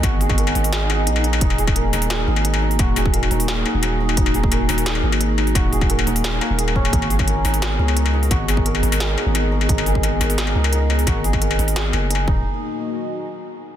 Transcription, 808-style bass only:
X:1
M:4/4
L:1/16
Q:1/4=174
K:Ebm
V:1 name="808-style bass" clef=bass
A,,,6 A,,,6 B,,,4 | E,,,6 E,,,4 A,,,6 | E,,,6 E,,,4 z E,,,4- E,,, | E,,,6 E,,,4 A,,,6 |
E,,,6 E,,,4 z E,,,4- E,,, | A,,,6 A,,,4 D,,6 | A,,,6 A,,,4 z A,,,4- A,,, | A,,,6 A,,,4 D,,6 |
A,,,6 A,,,4 G,,,4 E,,,2 | z16 |]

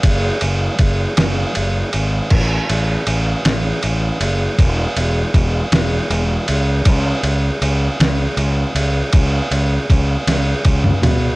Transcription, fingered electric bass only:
X:1
M:6/8
L:1/8
Q:3/8=53
K:C#phr
V:1 name="Fingered electric bass" clef=bass
F,,, F,,, F,,, F,,, F,,, G,,, | A,,, A,,, A,,, A,,, A,,, F,,, | E,,, E,,, E,,, E,,, E,,, C,, | C,, C,, C,, C,, C,, C,, |
C,, C,, C,, C,, C,, B,, |]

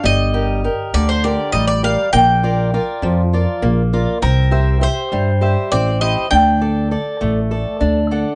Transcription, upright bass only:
X:1
M:7/8
L:1/8
Q:1/4=100
K:Gm
V:1 name="Upright bass" clef=bass
G,,,3 D,,2 A,,,2 | B,,,3 F,,2 B,,,2 | C,,3 G,,2 A,,,2 | D,,3 A,,,2 D,,2 |]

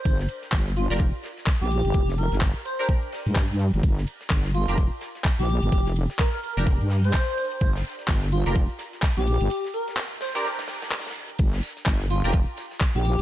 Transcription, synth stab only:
X:1
M:4/4
L:1/16
Q:"Swing 16ths" 1/4=127
K:Gm
V:1 name="Synth stab"
[DGB]6- [DGB] [DGB] z8 | z6 z [DGB]8- [DGB]- | [DGB]6- [DGB] [DGB] z8 | z6 z [DGB]8- [DGB]- |
[DGB]6- [DGB] [DGB] z8 | z6 z [DGB]8- [DGB]- | [DGB]6- [DGB] [DGB] z8 |]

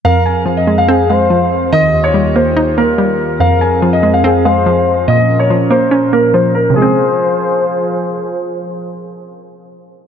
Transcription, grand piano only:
X:1
M:4/4
L:1/16
Q:1/4=143
K:Fm
V:1 name="Grand piano"
f2 a3 e2 f3 f6 | e3 d3 c4 B6 | f2 a3 e2 f3 f6 | e3 d3 c4 B2 c2 B2 |
A12 z4 | z16 |]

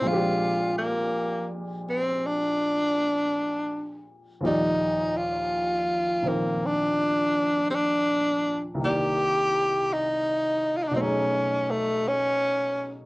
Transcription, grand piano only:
X:1
M:4/4
L:1/8
Q:"Swing" 1/4=55
K:Bblyd
V:1 name="Grand piano" clef=bass
[B,,F,_A,CDG]8 | [_E,,B,,F,G,d]3 [B,,_E,F,C]4- [B,,E,F,C] | [C,,C,_E,B,d]4 [=B,,^F,A,^C^D^G]4 |]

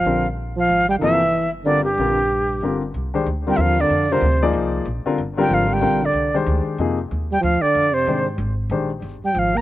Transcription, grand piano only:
X:1
M:3/4
L:1/8
Q:"Swing" 1/4=187
K:Gdor
V:1 name="Grand piano"
[D,G,CFB] z4 z | [C,F,B,EA] z3 [D,G,CFB] z | [D,G,CFB] z3 [D,G,CFB] z | [K:Fdor] z [E,A,DGc] z [D,G,CFB]3 |
z [D,G,CFB] z [F,B,EAd]3 | z [D,G,CFB] z [D,G,CFB]3 | [D,G,CFB] z2 [E,A,DGc]3 | [C,F,B,EA] z4 z |
z2 [E,A,DGc] z3 | [E,A,DGc] z4 z |]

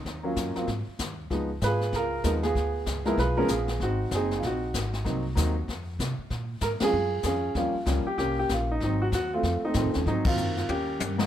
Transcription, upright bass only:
X:1
M:4/4
L:1/8
Q:"Swing" 1/4=192
K:Abmix
V:1 name="Upright bass" clef=bass
E,,2 G,, z A,, z E,,2 | D,,2 A,,2 D,,2 E,,2 | =D,,2 _D,,2 =B,,,2 _B,,,2 | A,,,2 G,,,2 B,,,2 A,,,2 |
C,,2 E,,2 F,,2 C, z | B,,2 A,, z G,,2 F,,2 | E,, z D,, z C,,2 B,,,2 | A,,,2 E,,2 F,, z (3=A,, F,, E,, |
A,,2 G,,2 E,,2 =G,,2 |]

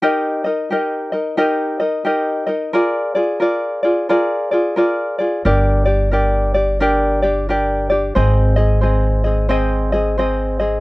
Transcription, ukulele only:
X:1
M:4/4
L:1/8
Q:"Swing" 1/4=89
K:Eb
V:1 name="Ukulele"
[EGBe] [EBe] [EGBe] [EBe] [EGBe] [EBe] [EGBe] [EBe] | [FABd] [FAd] [FABd] [FAd] [FABd] [FAd] [FABd] [FAd] | [DGBd] [DGd] [DGBd] [DGd] [DGBd] [DGd] [DGBd] [DGd] | [CAce] [CAe] [CAce] [CAe] [CAce] [CAe] [CAce] [CAe] |]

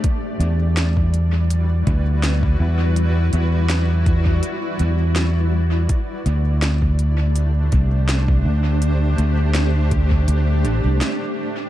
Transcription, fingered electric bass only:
X:1
M:4/4
L:1/16
Q:1/4=82
K:Em
V:1 name="Fingered electric bass" clef=bass
z2 E,,8 D,,4 E,,2- | E,,2 E,,6 z2 E,,6 | z2 D,,8 C,,4 D,,2- | D,,2 D,,6 D,,2 A,,, C,, z4 |]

